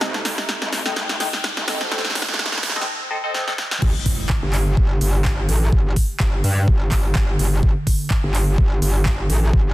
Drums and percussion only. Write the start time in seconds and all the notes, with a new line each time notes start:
0.01 snare
0.14 snare
0.25 snare, open hi-hat
0.38 snare
0.49 snare
0.62 snare
0.73 snare, open hi-hat
0.86 snare
0.96 snare
1.09 snare
1.20 snare, open hi-hat
1.33 snare
1.44 snare
1.57 snare
1.68 snare, open hi-hat
1.81 snare
1.92 snare
1.98 snare
2.05 snare
2.10 snare
2.15 snare, open hi-hat
2.22 snare
2.29 snare
2.34 snare
2.39 snare
2.46 snare
2.52 snare
2.58 snare
2.63 snare, open hi-hat
2.70 snare
2.76 snare
2.81 snare
3.34 snare
3.48 snare
3.58 snare
3.71 snare
3.82 kick, crash
4.06 kick, open hi-hat
4.29 kick, clap
4.53 clap, open hi-hat
4.77 kick
5.01 open hi-hat
5.25 kick, clap
5.49 open hi-hat
5.73 kick
5.96 kick, open hi-hat
6.20 kick, clap
6.44 open hi-hat
6.68 kick
6.91 kick, clap, open hi-hat
7.15 kick, clap
7.39 open hi-hat
7.63 kick
7.87 kick, open hi-hat
8.10 kick, clap
8.34 clap, open hi-hat
8.58 kick
8.82 open hi-hat
9.06 kick, clap
9.30 open hi-hat
9.53 kick